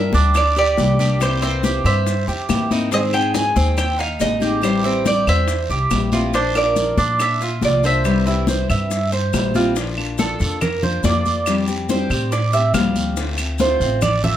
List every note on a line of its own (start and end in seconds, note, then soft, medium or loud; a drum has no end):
0.00 0.34 G3 medium
0.00 0.34 A#3 soft
0.00 0.35 D4 soft
0.00 0.35 G4 soft
0.00 0.13 A#4 medium
0.00 0.37 E5 medium
0.13 0.74 D2 loud
0.13 0.56 D4 medium
0.13 high bongo soft
0.13 high conga medium
0.13 short guiro medium
0.13 maracas soft
0.34 0.56 D5 medium
0.34 muted steel-string acoustic guitar stroke medium
0.34 high bongo medium
0.34 high conga soft
0.34 long guiro medium
0.34 claves medium
0.34 maracas medium
0.56 0.98 G4 medium
0.56 1.22 D5 medium
0.56 high bongo soft
0.56 high conga soft
0.56 maracas soft
0.77 1.79 C2 medium
0.77 0.99 G3 soft
0.77 0.99 A#3 soft
0.77 0.99 D4 soft
0.77 0.98 G4 medium
0.77 high bongo soft
0.77 low bongo medium
0.77 high conga medium
0.77 short guiro medium
0.77 maracas medium
0.99 1.20 G3 medium
0.99 1.20 A#3 medium
0.99 1.20 D4 medium
0.99 1.20 G4 medium
0.99 1.41 G4 medium
0.99 high conga medium
0.99 short guiro medium
0.99 maracas soft
1.20 1.41 C3 medium
1.20 1.41 E3 medium
1.20 1.41 A#3 medium
1.20 1.42 C4 medium
1.20 1.41 E4 medium
1.20 1.41 C5 medium
1.20 high bongo medium
1.20 long guiro medium
1.20 claves medium
1.20 maracas medium
1.42 1.62 E3 soft
1.42 1.63 A#3 medium
1.42 1.63 C4 medium
1.42 1.63 E4 medium
1.42 1.85 C5 medium
1.42 high bongo soft
1.42 high conga soft
1.42 maracas soft
1.63 2.05 E3 soft
1.63 2.05 A#3 soft
1.63 2.06 C4 soft
1.63 2.06 E4 medium
1.63 1.84 G4 medium
1.63 high bongo medium
1.63 high conga medium
1.63 short guiro medium
1.63 maracas medium
1.84 2.24 G2 medium
1.84 2.27 C5 medium
1.84 2.67 E5 medium
1.84 high bongo soft
1.84 high conga soft
1.84 short guiro medium
1.84 claves medium
1.84 maracas soft
2.07 muted steel-string acoustic guitar stroke medium
2.07 high bongo medium
2.07 high conga soft
2.07 long guiro medium
2.07 maracas medium
2.28 2.69 G4 medium
2.28 high bongo soft
2.28 high conga soft
2.28 maracas soft
2.49 3.50 G#2 medium
2.49 2.69 E3 soft
2.49 2.70 A#3 soft
2.49 2.70 C4 soft
2.49 2.70 E4 medium
2.49 high bongo soft
2.49 low bongo medium
2.49 high conga medium
2.49 short guiro medium
2.49 claves medium
2.49 maracas medium
2.71 2.91 E3 medium
2.71 2.92 A#3 medium
2.71 2.91 C4 medium
2.71 2.92 D#4 medium
2.71 2.91 E4 medium
2.71 high conga medium
2.71 short guiro medium
2.71 maracas soft
2.91 3.12 D#3 medium
2.91 3.12 G#3 medium
2.91 3.13 C4 medium
2.91 3.12 D#4 medium
2.91 3.12 G#4 medium
2.91 2.99 D#5 medium
2.91 high bongo medium
2.91 high conga soft
2.91 long guiro medium
2.91 maracas medium
3.13 3.33 G#3 medium
3.13 3.33 C4 medium
3.13 3.34 D#4 medium
3.13 3.34 G#4 medium
3.13 3.55 G#4 medium
3.13 3.34 G5 medium
3.13 high bongo soft
3.13 high conga soft
3.13 claves medium
3.13 maracas soft
3.34 3.76 G#3 soft
3.34 3.76 C4 soft
3.34 3.76 D#4 medium
3.34 3.76 G#4 soft
3.34 3.77 G#5 medium
3.34 high bongo soft
3.34 high conga soft
3.34 short guiro medium
3.34 maracas medium
3.56 4.16 D#2 medium
3.56 3.97 C4 medium
3.56 high bongo soft
3.56 high conga medium
3.56 short guiro medium
3.56 maracas soft
3.77 4.00 G5 medium
3.77 muted steel-string acoustic guitar stroke soft
3.77 high bongo medium
3.77 high conga soft
3.77 long guiro medium
3.77 claves medium
3.77 maracas medium
3.99 4.40 D#4 medium
3.99 4.20 F5 medium
3.99 high bongo soft
3.99 high conga soft
3.99 maracas soft
4.19 5.21 A1 medium
4.19 4.40 G#3 soft
4.19 4.40 C4 soft
4.19 4.40 D#4 soft
4.19 4.39 G#4 medium
4.19 4.60 D#5 medium
4.19 high bongo soft
4.19 low bongo medium
4.19 high conga medium
4.19 short guiro medium
4.19 maracas medium
4.40 4.61 G#3 medium
4.40 4.61 C4 medium
4.40 4.62 D#4 medium
4.40 4.83 G4 medium
4.40 4.61 G#4 medium
4.40 high conga medium
4.40 short guiro medium
4.40 maracas soft
4.61 4.83 E3 medium
4.61 4.83 G3 medium
4.61 4.82 C4 medium
4.61 4.81 E4 medium
4.61 5.03 C5 medium
4.61 high bongo medium
4.61 high conga soft
4.61 long guiro medium
4.61 claves medium
4.61 maracas medium
4.82 5.04 G3 medium
4.82 5.04 C4 medium
4.82 5.05 C4 medium
4.82 5.04 E4 medium
4.82 high bongo soft
4.82 high conga soft
4.82 maracas soft
5.04 5.46 E3 soft
5.04 5.47 G3 medium
5.04 5.47 C4 medium
5.04 5.47 E4 medium
5.04 5.27 G4 medium
5.04 5.28 D5 medium
5.04 high bongo medium
5.04 high conga medium
5.04 short guiro medium
5.04 maracas medium
5.27 5.67 E2 medium
5.27 5.69 C5 medium
5.27 6.10 E5 loud
5.27 high bongo soft
5.27 high conga soft
5.27 short guiro medium
5.27 claves medium
5.27 maracas soft
5.47 muted steel-string acoustic guitar stroke soft
5.47 high bongo medium
5.47 high conga soft
5.47 long guiro medium
5.47 maracas medium
5.70 5.90 C2 medium
5.70 6.12 G4 medium
5.70 high bongo soft
5.70 high conga soft
5.70 maracas soft
5.91 6.92 A#1 medium
5.91 6.12 E3 soft
5.91 6.12 G3 soft
5.91 6.12 C4 soft
5.91 6.11 E4 medium
5.91 high bongo soft
5.91 low bongo medium
5.91 high conga medium
5.91 short guiro medium
5.91 claves medium
5.91 maracas medium
6.12 6.33 G3 soft
6.12 6.33 C4 medium
6.12 6.33 E4 medium
6.12 6.34 F4 medium
6.12 high conga medium
6.12 short guiro medium
6.12 maracas soft
6.33 6.54 F3 medium
6.33 6.54 A#3 medium
6.33 6.55 D4 medium
6.33 6.54 F4 medium
6.33 6.54 C5 medium
6.33 high bongo medium
6.33 high conga soft
6.33 long guiro medium
6.33 maracas medium
6.55 6.76 A#3 soft
6.55 6.76 D4 medium
6.55 6.76 F4 medium
6.55 6.97 A#4 medium
6.55 7.21 D5 medium
6.55 high bongo soft
6.55 high conga soft
6.55 claves medium
6.55 maracas soft
6.76 7.18 F3 soft
6.76 7.18 A#3 soft
6.76 7.18 D4 soft
6.76 7.19 F4 medium
6.76 high bongo medium
6.76 high conga medium
6.76 short guiro medium
6.76 maracas medium
6.97 7.58 A#2 medium
6.97 7.40 D4 medium
6.97 high bongo soft
6.97 high conga medium
6.97 short guiro medium
6.97 maracas soft
7.19 7.64 E5 medium
7.19 muted steel-string acoustic guitar stroke medium
7.19 high bongo medium
7.19 high conga soft
7.19 long guiro medium
7.19 claves medium
7.19 maracas medium
7.40 7.83 F4 medium
7.40 high bongo soft
7.40 high conga soft
7.40 maracas soft
7.61 8.63 C2 medium
7.61 7.83 F3 soft
7.61 7.83 A#3 soft
7.61 7.82 D4 soft
7.61 7.82 F4 medium
7.61 7.85 D5 medium
7.61 high bongo soft
7.61 low bongo medium
7.61 high conga medium
7.61 short guiro medium
7.61 maracas medium
7.83 8.04 A#3 medium
7.83 8.04 D4 medium
7.83 8.04 F4 medium
7.83 8.26 C5 medium
7.83 9.31 E5 medium
7.83 short guiro medium
7.83 maracas soft
8.04 8.25 C3 medium
8.04 8.26 E3 medium
8.04 8.26 G3 medium
8.04 8.26 C4 medium
8.04 8.25 E4 medium
8.04 high bongo medium
8.04 high conga soft
8.04 long guiro medium
8.04 claves medium
8.04 maracas medium
8.26 8.46 E3 soft
8.26 8.46 G3 medium
8.26 8.46 C4 medium
8.26 8.47 E4 medium
8.26 high bongo soft
8.26 high conga soft
8.26 maracas soft
8.47 8.89 E3 soft
8.47 8.89 G3 soft
8.47 8.90 C4 soft
8.47 8.90 E4 soft
8.47 8.69 C5 medium
8.47 high bongo medium
8.47 high conga medium
8.47 short guiro medium
8.47 maracas medium
8.69 9.30 G2 loud
8.69 9.11 E5 medium
8.69 high bongo soft
8.69 high conga soft
8.69 short guiro medium
8.69 claves medium
8.69 maracas soft
8.90 muted steel-string acoustic guitar stroke medium
8.90 high bongo medium
8.90 high conga soft
8.90 long guiro medium
8.90 maracas medium
9.12 9.54 C5 medium
9.12 high bongo soft
9.12 high conga soft
9.12 maracas soft
9.33 10.34 A#1 medium
9.33 9.54 E3 soft
9.33 9.54 G3 soft
9.33 9.54 C4 medium
9.33 9.53 E4 soft
9.33 high bongo soft
9.33 low bongo medium
9.33 high conga medium
9.33 short guiro medium
9.33 claves medium
9.33 maracas medium
9.54 9.76 E3 soft
9.54 9.76 G3 medium
9.54 9.76 C4 medium
9.54 9.75 E4 medium
9.54 9.76 F4 medium
9.54 high conga medium
9.54 short guiro medium
9.54 maracas soft
9.76 9.97 F3 medium
9.76 9.97 A#3 medium
9.76 9.97 D4 medium
9.76 9.96 F4 medium
9.76 high bongo medium
9.76 long guiro medium
9.76 maracas medium
9.97 10.17 A#3 soft
9.97 10.18 D4 soft
9.97 10.18 F4 soft
9.97 high conga soft
9.97 claves medium
10.18 10.39 F3 medium
10.18 10.39 A#3 medium
10.18 10.39 D4 medium
10.18 10.39 F4 medium
10.18 10.59 A4 medium
10.18 high bongo medium
10.18 high conga medium
10.18 short guiro medium
10.18 maracas medium
10.40 11.00 F2 loud
10.40 10.61 A#3 soft
10.40 10.61 D4 soft
10.40 10.61 F4 medium
10.40 high conga soft
10.40 short guiro medium
10.40 maracas soft
10.61 10.82 A#4 medium
10.61 muted steel-string acoustic guitar stroke medium
10.61 high bongo medium
10.61 high conga soft
10.61 low conga medium
10.61 long guiro medium
10.61 claves medium
10.61 maracas medium
10.82 11.04 A#3 soft
10.82 11.04 D4 soft
10.82 11.03 F4 medium
10.82 11.04 C5 medium
10.82 high conga soft
10.82 low conga medium
11.04 12.04 F2 medium
11.04 11.46 F3 medium
11.04 11.46 A#3 medium
11.04 11.47 D4 medium
11.04 11.47 F4 medium
11.04 11.64 D5 medium
11.04 high bongo medium
11.04 low bongo medium
11.04 high conga medium
11.04 short guiro medium
11.04 maracas medium
11.25 high conga medium
11.25 short guiro medium
11.25 maracas soft
11.46 11.67 F3 medium
11.46 11.67 G3 medium
11.46 11.67 C4 medium
11.46 11.66 G4 medium
11.46 high bongo medium
11.46 high conga soft
11.46 long guiro medium
11.46 claves medium
11.46 maracas medium
11.67 11.89 G3 soft
11.67 11.89 C4 soft
11.67 11.88 G4 soft
11.67 high bongo soft
11.67 high conga soft
11.67 maracas medium
11.89 12.10 F3 medium
11.89 12.10 G3 medium
11.89 12.10 C4 medium
11.89 12.10 G4 medium
11.89 12.29 C5 medium
11.89 high bongo medium
11.89 high conga medium
11.89 short guiro medium
11.89 maracas medium
12.10 12.70 A2 loud
12.10 12.31 G3 soft
12.10 12.32 C4 soft
12.10 12.32 G4 soft
12.10 high conga soft
12.10 short guiro medium
12.10 claves medium
12.10 maracas soft
12.32 12.53 D5 medium
12.32 muted steel-string acoustic guitar stroke medium
12.32 high bongo medium
12.32 high conga soft
12.32 long guiro medium
12.32 maracas medium
12.53 12.74 G3 soft
12.53 12.74 C4 soft
12.53 12.74 G4 medium
12.53 12.74 E5 medium
12.53 high bongo soft
12.53 high conga soft
12.53 maracas medium
12.74 13.75 D2 medium
12.74 13.17 F3 medium
12.74 13.17 G3 medium
12.74 13.17 C4 medium
12.74 13.17 G4 medium
12.74 13.34 F5 medium
12.74 high bongo medium
12.74 low bongo medium
12.74 high conga medium
12.74 short guiro medium
12.74 claves medium
12.74 maracas medium
12.96 high bongo soft
12.96 high conga medium
12.96 short guiro medium
12.96 maracas soft
13.17 13.38 D3 medium
13.17 13.38 A3 medium
13.17 13.38 C4 medium
13.17 13.37 F4 medium
13.17 high bongo medium
13.17 high conga soft
13.17 long guiro medium
13.17 maracas medium
13.38 13.58 A3 soft
13.38 13.59 C4 soft
13.38 13.59 F4 soft
13.38 high conga soft
13.38 claves medium
13.38 maracas medium
13.59 13.80 D3 medium
13.59 13.80 A3 medium
13.59 13.80 C4 medium
13.59 13.80 F4 medium
13.59 14.00 C5 medium
13.59 high bongo medium
13.59 high conga medium
13.59 short guiro medium
13.59 maracas medium
13.80 14.37 A1 medium
13.80 14.02 A3 soft
13.80 14.02 C4 soft
13.80 14.02 F4 medium
13.80 high conga soft
13.80 short guiro medium
13.80 maracas soft
14.02 14.23 D5 medium
14.02 muted steel-string acoustic guitar stroke medium
14.02 high bongo medium
14.02 high conga soft
14.02 low conga medium
14.02 long guiro medium
14.02 claves medium
14.02 maracas medium
14.24 14.37 A3 soft
14.24 14.37 C4 soft
14.24 14.37 F4 soft
14.24 14.37 E5 loud
14.24 high conga soft
14.24 low conga medium